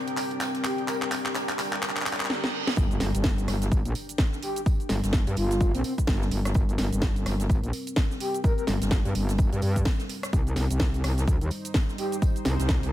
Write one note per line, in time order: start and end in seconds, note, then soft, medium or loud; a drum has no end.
0.00 2.26 G3 medium
0.00 2.26 C4 medium
0.00 2.30 D4 medium
0.00 2.30 G4 medium
0.00 2.26 A#4 loud
0.00 2.30 A#4 medium
0.00 2.30 G5 medium
0.08 closed hi-hat soft
0.17 clap medium
0.17 open hi-hat loud
0.17 tambourine medium
0.31 closed hi-hat soft
0.41 snare loud
0.41 clap medium
0.41 closed hi-hat medium
0.41 tambourine medium
0.55 snare soft
0.55 closed hi-hat medium
0.64 0.83 G4 medium
0.64 clap medium
0.64 open hi-hat loud
0.64 tambourine medium
0.78 closed hi-hat soft
0.88 0.97 A#4 medium
0.88 clap medium
0.88 closed hi-hat medium
0.88 tambourine medium
1.02 1.08 A#4 medium
1.02 clap medium
1.02 closed hi-hat soft
1.12 clap medium
1.12 open hi-hat loud
1.12 tambourine medium
1.25 snare medium
1.25 clap medium
1.25 closed hi-hat soft
1.35 snare loud
1.35 clap loud
1.35 closed hi-hat medium
1.35 tambourine medium
1.49 clap medium
1.49 closed hi-hat soft
1.59 snare loud
1.59 clap loud
1.59 open hi-hat loud
1.59 tambourine medium
1.73 clap medium
1.73 closed hi-hat soft
1.83 snare loud
1.83 clap loud
1.83 closed hi-hat medium
1.83 tambourine medium
1.83 reverse cymbal medium
1.89 clap medium
1.96 clap medium
1.96 closed hi-hat medium
2.01 clap medium
2.06 clap loud
2.06 open hi-hat loud
2.13 clap medium
2.20 clap medium
2.20 closed hi-hat soft
2.25 clap loud
2.30 snare medium
2.44 snare medium
2.67 snare medium
2.77 2.99 G1 medium
2.77 12.93 G3 medium
2.77 6.51 D4 medium
2.77 10.29 A#4 loud
2.77 kick loud
2.77 tambourine medium
2.77 impact medium
2.77 shaker medium
2.91 closed hi-hat soft
2.91 shaker soft
3.00 3.12 G1 medium
3.00 snare medium
3.00 open hi-hat loud
3.00 tambourine medium
3.15 3.46 G1 loud
3.15 closed hi-hat medium
3.15 shaker medium
3.24 kick loud
3.24 snare loud
3.24 tambourine medium
3.24 shaker medium
3.38 closed hi-hat medium
3.38 shaker soft
3.48 3.70 G1 loud
3.48 cross-stick medium
3.48 snare medium
3.48 open hi-hat loud
3.48 tambourine medium
3.61 snare soft
3.61 closed hi-hat medium
3.61 shaker medium
3.72 3.83 G#1 loud
3.72 kick loud
3.72 tambourine medium
3.72 shaker medium
3.85 3.94 A#1 medium
3.85 closed hi-hat medium
3.85 shaker soft
3.95 open hi-hat loud
3.95 tambourine medium
4.09 closed hi-hat medium
4.09 shaker medium
4.18 kick loud
4.18 snare loud
4.18 tambourine medium
4.18 shaker medium
4.33 snare soft
4.33 shaker soft
4.43 4.61 G4 medium
4.43 open hi-hat loud
4.43 tambourine medium
4.56 closed hi-hat medium
4.56 shaker medium
4.66 kick loud
4.66 tambourine medium
4.66 shaker medium
4.80 closed hi-hat soft
4.80 shaker soft
4.89 5.01 G1 medium
4.89 snare medium
4.89 open hi-hat loud
4.89 tambourine medium
5.03 5.25 G1 loud
5.03 snare soft
5.03 closed hi-hat medium
5.03 shaker medium
5.13 kick loud
5.13 snare loud
5.13 tambourine medium
5.13 shaker medium
5.27 5.35 G2 loud
5.27 closed hi-hat soft
5.27 closed hi-hat medium
5.27 shaker soft
5.36 5.72 G1 medium
5.36 5.72 F4 medium
5.36 open hi-hat loud
5.36 tambourine medium
5.51 snare medium
5.51 closed hi-hat medium
5.51 shaker medium
5.60 kick loud
5.60 tambourine medium
5.60 shaker medium
5.74 5.83 A#1 medium
5.74 5.81 C4 loud
5.74 closed hi-hat medium
5.74 closed hi-hat soft
5.74 shaker soft
5.84 5.93 C4 medium
5.84 open hi-hat loud
5.84 tambourine medium
5.98 kick medium
5.98 closed hi-hat medium
5.98 shaker medium
6.07 6.30 G1 loud
6.07 kick loud
6.07 snare loud
6.07 tambourine medium
6.07 shaker medium
6.21 snare medium
6.21 shaker soft
6.31 6.54 G1 medium
6.31 open hi-hat loud
6.31 tambourine medium
6.45 cross-stick medium
6.45 snare soft
6.45 closed hi-hat medium
6.45 shaker medium
6.54 6.77 G1 loud
6.54 10.29 C4 medium
6.54 kick loud
6.54 tambourine medium
6.54 shaker medium
6.69 closed hi-hat soft
6.69 shaker soft
6.78 6.90 G1 medium
6.78 snare medium
6.78 open hi-hat loud
6.78 tambourine medium
6.93 7.24 G1 loud
6.93 closed hi-hat medium
6.93 shaker medium
7.02 kick loud
7.02 snare loud
7.02 tambourine loud
7.02 shaker medium
7.16 closed hi-hat soft
7.16 shaker soft
7.26 7.48 G1 loud
7.26 cross-stick medium
7.26 snare medium
7.26 open hi-hat loud
7.26 tambourine medium
7.40 snare soft
7.40 closed hi-hat medium
7.40 shaker medium
7.50 7.61 G#1 loud
7.50 kick loud
7.50 tambourine medium
7.50 shaker medium
7.63 7.72 A#1 medium
7.63 closed hi-hat medium
7.63 shaker soft
7.73 open hi-hat loud
7.73 tambourine medium
7.87 closed hi-hat medium
7.87 shaker medium
7.96 kick loud
7.96 snare loud
7.96 tambourine medium
7.96 shaker medium
8.11 snare soft
8.11 shaker soft
8.20 8.39 G4 medium
8.20 open hi-hat loud
8.20 tambourine medium
8.34 closed hi-hat medium
8.34 shaker medium
8.44 8.53 A#4 medium
8.44 kick loud
8.44 tambourine medium
8.44 shaker medium
8.58 8.64 A#4 medium
8.58 closed hi-hat soft
8.58 shaker soft
8.67 8.79 G1 medium
8.67 snare medium
8.67 open hi-hat loud
8.67 tambourine medium
8.82 9.03 G1 loud
8.82 snare medium
8.82 closed hi-hat medium
8.82 shaker medium
8.91 kick loud
8.91 snare loud
8.91 tambourine medium
8.91 shaker medium
9.05 9.13 G2 loud
9.05 closed hi-hat soft
9.05 closed hi-hat medium
9.05 shaker soft
9.15 9.50 G1 loud
9.15 open hi-hat loud
9.15 tambourine medium
9.29 snare soft
9.29 closed hi-hat medium
9.29 shaker medium
9.38 kick loud
9.38 tambourine medium
9.38 shaker medium
9.52 9.61 G2 medium
9.52 closed hi-hat soft
9.52 shaker soft
9.62 9.84 G2 loud
9.62 open hi-hat loud
9.62 tambourine medium
9.76 kick medium
9.76 closed hi-hat medium
9.76 shaker medium
9.85 kick loud
9.85 snare loud
9.85 tambourine loud
9.85 shaker medium
9.99 snare medium
9.99 closed hi-hat soft
9.99 shaker soft
10.09 open hi-hat loud
10.09 tambourine medium
10.23 cross-stick medium
10.23 snare soft
10.23 closed hi-hat medium
10.23 shaker medium
10.33 10.55 C2 loud
10.33 12.93 D#4 medium
10.33 12.93 C5 loud
10.33 kick loud
10.33 tambourine medium
10.33 shaker medium
10.47 closed hi-hat soft
10.47 shaker soft
10.56 10.68 C2 medium
10.56 snare medium
10.56 open hi-hat loud
10.56 tambourine medium
10.70 11.02 C2 loud
10.70 closed hi-hat medium
10.70 shaker medium
10.80 kick loud
10.80 snare loud
10.80 tambourine medium
10.80 shaker medium
10.94 closed hi-hat soft
10.94 shaker soft
11.04 11.26 C2 loud
11.04 cross-stick medium
11.04 snare medium
11.04 open hi-hat loud
11.04 tambourine medium
11.12 12.93 C5 medium
11.18 snare soft
11.18 closed hi-hat medium
11.18 shaker medium
11.28 11.39 D2 loud
11.28 kick loud
11.28 tambourine medium
11.28 shaker medium
11.41 11.50 D#2 medium
11.41 closed hi-hat medium
11.41 shaker soft
11.51 open hi-hat loud
11.51 tambourine medium
11.65 closed hi-hat medium
11.65 shaker medium
11.74 kick loud
11.74 snare loud
11.74 tambourine medium
11.74 shaker medium
11.89 snare soft
11.89 shaker soft
11.98 12.17 G4 medium
11.98 open hi-hat loud
11.98 tambourine medium
12.12 closed hi-hat medium
12.12 shaker medium
12.22 kick loud
12.22 tambourine medium
12.22 shaker medium
12.36 closed hi-hat soft
12.36 shaker soft
12.45 12.57 C2 medium
12.45 snare medium
12.45 open hi-hat loud
12.45 tambourine medium
12.59 12.81 C2 loud
12.59 snare soft
12.59 closed hi-hat medium
12.59 shaker medium
12.69 kick loud
12.69 snare loud
12.69 tambourine medium
12.69 shaker medium
12.83 12.91 C2 loud
12.83 closed hi-hat soft
12.83 closed hi-hat medium
12.83 shaker soft